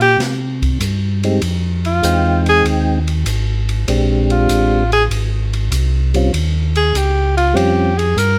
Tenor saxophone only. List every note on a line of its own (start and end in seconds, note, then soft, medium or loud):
0.02 0.19 G4 loud
1.86 2.43 F4 medium
2.49 2.65 G#4 loud
4.31 4.88 F4 medium
4.93 5.04 G#4 loud
6.77 6.98 G#4 medium
6.97 7.37 G4 medium
7.37 7.58 F4 medium
7.57 7.99 G4 medium
7.98 8.19 G#4 medium
8.18 8.39 A#4 medium